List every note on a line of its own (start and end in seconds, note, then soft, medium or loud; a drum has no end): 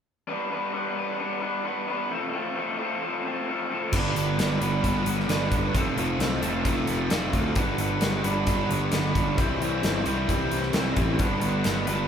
0.27 0.50 G3 medium
0.27 0.51 B3 medium
0.27 0.50 D4 medium
0.27 0.51 B4 medium
0.51 0.73 G3 medium
0.51 0.73 B3 medium
0.51 0.73 D4 medium
0.51 0.74 B4 medium
0.74 0.95 G3 medium
0.74 0.95 B3 medium
0.74 0.95 D4 medium
0.74 0.96 B4 medium
0.96 1.17 G3 medium
0.96 1.19 B3 medium
0.96 1.18 D4 medium
0.96 1.19 B4 medium
1.18 1.40 G3 medium
1.18 1.41 B3 loud
1.18 1.41 D4 medium
1.18 1.41 B4 medium
1.41 1.63 G3 medium
1.41 1.64 B3 medium
1.41 1.63 D4 medium
1.41 1.64 B4 medium
1.64 1.86 G3 medium
1.64 1.87 B3 medium
1.64 1.87 D4 medium
1.64 1.87 B4 medium
1.88 2.09 G3 medium
1.88 2.09 B3 medium
1.88 2.09 D4 medium
1.88 2.10 B4 medium
2.10 2.32 F3 medium
2.10 2.32 A3 medium
2.10 2.33 C4 medium
2.10 2.34 F4 medium
2.10 2.34 A4 medium
2.33 2.55 F3 medium
2.33 2.55 A3 medium
2.33 2.55 C4 medium
2.33 2.56 F4 medium
2.33 2.56 A4 medium
2.56 2.77 F3 medium
2.56 2.78 A3 medium
2.56 2.78 C4 medium
2.56 2.78 F4 medium
2.56 2.79 A4 medium
2.78 3.00 F3 medium
2.78 3.00 A3 medium
2.78 3.01 C4 medium
2.78 3.01 F4 medium
2.78 3.02 A4 medium
3.01 3.24 F3 medium
3.01 3.24 A3 medium
3.01 3.25 C4 medium
3.01 3.25 F4 loud
3.01 3.25 A4 medium
3.25 3.47 F3 medium
3.25 3.47 A3 medium
3.25 3.48 C4 medium
3.25 3.48 F4 medium
3.25 3.48 A4 medium
3.48 3.69 F3 medium
3.48 3.70 A3 medium
3.48 3.70 C4 medium
3.48 3.70 F4 medium
3.48 3.71 A4 medium
3.71 3.92 F3 medium
3.71 3.92 A3 medium
3.71 3.92 C4 medium
3.71 3.92 F4 medium
3.71 3.92 A4 medium
3.92 4.13 G1 medium
3.92 4.38 G2 medium
3.92 4.37 D3 medium
3.92 4.60 G3 medium
3.92 4.17 G3 medium
3.92 4.60 B3 medium
3.92 4.15 B3 medium
3.92 4.60 D4 medium
3.92 4.13 D4 medium
3.92 4.59 B4 loud
3.92 kick loud
3.92 crash medium
4.14 4.35 G1 medium
4.14 4.38 B3 medium
4.14 4.40 D4 medium
4.14 closed hi-hat medium
4.18 4.38 G3 medium
4.38 4.58 G1 medium
4.38 4.63 D3 medium
4.38 4.61 G3 medium
4.38 4.61 B3 medium
4.38 4.59 D4 medium
4.38 snare loud
4.38 closed hi-hat medium
4.59 4.80 G1 medium
4.59 4.81 G3 medium
4.59 5.26 G3 medium
4.59 5.28 B3 medium
4.59 4.82 B3 medium
4.59 4.84 D4 medium
4.59 5.27 D4 medium
4.59 5.28 B4 medium
4.59 closed hi-hat medium
4.64 5.08 G2 medium
4.64 4.80 D3 medium
4.81 5.04 G1 medium
4.81 5.25 D3 medium
4.81 5.06 G3 medium
4.81 5.05 B3 medium
4.81 5.03 D4 medium
4.81 kick medium
4.81 closed hi-hat medium
5.05 5.26 G1 medium
5.05 5.26 G3 medium
5.05 5.27 B3 medium
5.05 5.28 D4 medium
5.05 closed hi-hat medium
5.20 snare soft
5.25 5.49 G1 medium
5.25 5.71 G2 medium
5.25 5.72 D3 medium
5.25 5.50 G3 medium
5.25 5.73 G3 medium
5.25 5.49 B3 loud
5.25 5.73 D4 medium
5.25 5.47 D4 loud
5.29 5.73 B3 medium
5.29 5.74 B4 medium
5.29 snare loud
5.29 closed hi-hat medium
5.48 5.72 G1 medium
5.48 5.73 G3 medium
5.48 5.73 B3 medium
5.48 5.71 D4 medium
5.48 kick medium
5.48 closed hi-hat medium
5.73 5.95 F1 medium
5.73 6.19 F2 medium
5.73 6.17 C3 medium
5.73 6.41 F3 medium
5.73 5.97 F3 medium
5.73 6.41 A3 medium
5.73 5.95 A3 medium
5.73 6.42 C4 loud
5.73 5.94 C4 medium
5.73 6.42 F4 medium
5.73 6.41 A4 medium
5.73 kick loud
5.73 closed hi-hat medium
5.95 6.16 F1 medium
5.95 6.19 F3 medium
5.95 6.20 A3 medium
5.95 6.21 C4 medium
5.95 closed hi-hat medium
6.18 6.39 C2 medium
6.18 6.42 C3 medium
6.18 6.41 F3 medium
6.18 6.41 A3 medium
6.18 6.39 C4 medium
6.18 snare medium
6.18 closed hi-hat medium
6.40 6.62 F1 medium
6.40 6.89 F2 medium
6.40 6.62 C3 medium
6.40 6.63 F3 medium
6.40 6.64 A3 medium
6.40 7.09 A3 medium
6.40 6.66 C4 medium
6.40 7.10 C4 medium
6.40 7.10 F4 medium
6.40 7.09 A4 medium
6.40 closed hi-hat medium
6.45 7.09 F3 medium
6.63 6.85 F1 medium
6.63 7.09 C3 medium
6.63 6.88 F3 medium
6.63 6.87 A3 medium
6.63 6.85 C4 medium
6.63 kick medium
6.63 closed hi-hat medium
6.86 7.08 F1 medium
6.86 7.10 F3 soft
6.86 7.11 A3 medium
6.86 7.12 C4 medium
6.86 closed hi-hat medium
7.09 7.31 F1 medium
7.09 7.54 F2 medium
7.09 7.55 C3 medium
7.09 7.54 F3 medium
7.09 7.35 F3 medium
7.09 7.54 A3 medium
7.09 7.33 A3 medium
7.09 7.55 C4 medium
7.09 7.31 C4 loud
7.09 7.55 F4 medium
7.09 7.56 A4 medium
7.09 snare loud
7.09 closed hi-hat medium
7.32 7.54 D2 medium
7.32 7.55 A3 medium
7.32 7.54 C4 medium
7.32 kick medium
7.32 closed hi-hat medium
7.36 7.56 F3 medium
7.55 7.76 G1 medium
7.55 8.01 G2 medium
7.55 8.01 D3 medium
7.55 8.26 G3 medium
7.55 7.81 G3 medium
7.55 8.23 B3 medium
7.55 7.79 B3 medium
7.55 8.23 D4 medium
7.55 7.77 D4 medium
7.55 8.23 B4 medium
7.55 kick loud
7.55 closed hi-hat medium
7.78 7.99 G1 medium
7.78 8.03 G3 medium
7.78 8.04 B3 medium
7.78 8.04 D4 medium
7.78 closed hi-hat medium
8.01 8.22 G1 medium
8.01 8.27 D3 medium
8.01 8.26 G3 medium
8.01 snare loud
8.01 closed hi-hat medium
8.05 8.25 B3 medium
8.05 8.23 D4 medium
8.24 8.44 G1 medium
8.24 8.46 D3 medium
8.24 8.49 G3 medium
8.24 8.91 G3 medium
8.24 8.92 B3 medium
8.24 8.49 B3 medium
8.24 8.50 D4 medium
8.24 8.91 D4 medium
8.24 8.91 B4 medium
8.24 closed hi-hat medium
8.28 8.72 G2 medium
8.47 8.67 G1 medium
8.47 8.93 D3 medium
8.47 8.74 G3 medium
8.47 8.71 B3 medium
8.47 kick medium
8.47 closed hi-hat medium
8.51 8.69 D4 medium
8.70 8.90 G1 medium
8.70 8.94 B3 medium
8.70 8.95 D4 medium
8.70 closed hi-hat medium
8.75 8.94 G3 medium
8.91 9.13 G1 medium
8.91 9.37 G2 medium
8.91 9.37 D3 medium
8.91 9.37 G3 medium
8.91 9.19 G3 medium
8.91 9.37 B3 medium
8.91 9.37 D4 medium
8.91 9.38 B4 medium
8.91 snare loud
8.91 closed hi-hat medium
8.95 9.16 B3 medium
8.95 9.14 D4 loud
9.15 9.35 G1 medium
9.15 9.38 B3 medium
9.15 9.37 D4 medium
9.15 kick medium
9.15 closed hi-hat medium
9.19 9.40 G3 medium
9.36 9.58 C2 medium
9.36 10.04 C3 medium
9.36 9.81 C3 medium
9.36 10.04 E3 medium
9.36 10.06 G3 medium
9.36 10.05 C4 medium
9.36 10.04 E4 medium
9.36 10.03 C5 loud
9.36 kick loud
9.36 closed hi-hat medium
9.40 9.64 G3 medium
9.40 9.62 C4 medium
9.40 9.60 E4 medium
9.60 9.80 C2 medium
9.60 9.84 C4 medium
9.60 9.84 E4 medium
9.60 closed hi-hat medium
9.65 9.83 G3 medium
9.82 10.03 G1 medium
9.82 10.07 C3 medium
9.82 10.06 G3 medium
9.82 10.05 C4 medium
9.82 10.03 E4 medium
9.82 snare loud
9.82 closed hi-hat medium
10.04 10.26 C2 medium
10.04 10.72 C3 medium
10.04 10.73 E3 medium
10.04 10.73 G3 medium
10.04 10.26 G3 medium
10.04 10.73 C4 medium
10.04 10.27 C4 medium
10.04 10.29 E4 medium
10.04 10.73 E4 medium
10.04 10.72 C5 medium
10.04 closed hi-hat medium
10.08 10.24 C3 medium
10.25 10.49 C2 medium
10.25 10.71 C3 medium
10.25 10.53 G3 medium
10.25 10.52 C4 medium
10.25 kick medium
10.25 closed hi-hat medium
10.30 10.49 E4 medium
10.50 10.72 C2 medium
10.50 10.73 C4 medium
10.50 10.74 E4 medium
10.50 closed hi-hat medium
10.54 10.72 G3 medium
10.63 snare soft
10.72 10.94 C2 medium
10.72 11.18 C3 medium
10.72 11.19 E3 medium
10.72 10.98 G3 medium
10.72 11.17 G3 medium
10.72 10.96 C4 medium
10.72 11.19 C4 medium
10.72 10.95 E4 loud
10.72 11.19 E4 medium
10.72 11.19 C5 medium
10.72 snare loud
10.72 closed hi-hat medium
10.96 11.17 A1 medium
10.96 11.19 G3 medium
10.96 11.19 C4 medium
10.96 11.18 E4 medium
10.96 kick medium
10.96 closed hi-hat medium
11.18 11.40 G1 medium
11.18 11.65 G2 medium
11.18 11.64 D3 medium
11.18 11.86 G3 medium
11.18 11.45 G3 loud
11.18 11.86 B3 medium
11.18 11.42 B3 medium
11.18 11.87 D4 medium
11.18 11.86 B4 medium
11.18 kick loud
11.18 closed hi-hat medium
11.22 11.41 D4 loud
11.41 11.62 G1 medium
11.41 11.66 B3 medium
11.41 11.67 D4 medium
11.41 closed hi-hat medium
11.46 11.65 G3 medium
11.64 11.85 G1 medium
11.64 11.89 D3 medium
11.64 11.88 G3 medium
11.64 11.88 B3 medium
11.64 snare loud
11.64 closed hi-hat medium
11.69 11.86 D4 medium
11.87 12.08 G1 medium
11.87 12.08 G2 medium
11.87 12.08 D3 medium
11.87 12.08 G3 medium
11.87 12.08 B3 medium
11.87 12.08 D4 medium
11.87 12.08 B4 medium
11.87 closed hi-hat medium